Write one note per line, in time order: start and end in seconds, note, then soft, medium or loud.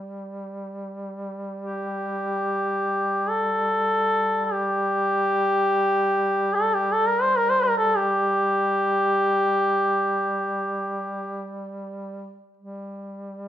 0.00 12.40 G3 soft
1.62 3.31 G4 medium
3.29 4.45 A4 medium
4.45 4.54 A4 medium
4.53 6.56 G4 medium
6.55 6.75 A4 medium
6.74 6.94 G4 medium
6.92 7.09 A4 medium
7.07 7.23 A#4 medium
7.22 7.38 C5 medium
7.37 7.51 A#4 medium
7.49 7.65 C5 medium
7.63 7.77 A#4 medium
7.78 7.98 A4 medium
7.97 11.58 G4 medium
12.57 13.48 G3 soft